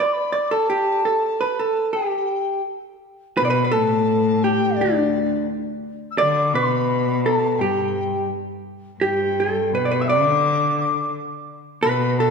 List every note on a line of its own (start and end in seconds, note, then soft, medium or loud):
0.00 0.31 D5 medium
0.05 0.14 D6 medium
0.13 0.35 B5 medium
0.32 0.52 D5 medium
0.32 0.53 D6 medium
0.51 0.69 A4 medium
0.51 1.43 A5 medium
0.70 1.03 G4 medium
1.05 1.43 A4 medium
1.41 1.60 B4 medium
1.41 1.62 B5 medium
1.59 1.93 A4 medium
1.59 1.94 A5 medium
1.93 2.61 G4 medium
1.93 2.61 G5 medium
3.37 3.75 B2 medium
3.37 3.44 B4 loud
3.37 3.50 B5 medium
3.45 3.50 D5 medium
3.50 3.63 B4 loud
3.50 3.74 B5 medium
3.64 3.72 B4 medium
3.71 4.80 A2 medium
3.71 4.44 A4 medium
3.71 4.44 A5 medium
4.43 4.80 G4 medium
4.43 4.77 G5 medium
4.76 5.48 D2 medium
4.76 5.47 D5 medium
4.81 5.46 D4 medium
6.11 6.20 E6 medium
6.18 6.56 D3 medium
6.18 6.55 D5 loud
6.18 6.55 D6 medium
6.53 7.60 B2 medium
6.53 7.27 B4 medium
6.53 7.23 B5 medium
7.24 7.58 A4 medium
7.24 7.60 A5 medium
7.58 8.29 G2 medium
7.58 8.27 G4 medium
7.58 8.30 G5 medium
9.00 9.74 G2 medium
9.00 9.39 G4 medium
9.00 9.70 G5 medium
9.40 9.72 A4 medium
9.73 10.09 B2 medium
9.73 9.88 B4 medium
9.73 10.02 B5 medium
9.85 9.90 D5 medium
9.91 10.02 B4 medium
10.00 10.09 E5 medium
10.00 10.10 E6 medium
10.07 11.13 D3 medium
10.07 11.10 D5 medium
10.07 10.79 D6 loud
10.80 11.12 D6 medium
11.83 12.30 B2 medium
11.83 12.16 B4 loud
11.83 12.20 B5 medium
12.19 12.30 A4 medium
12.19 12.30 A5 medium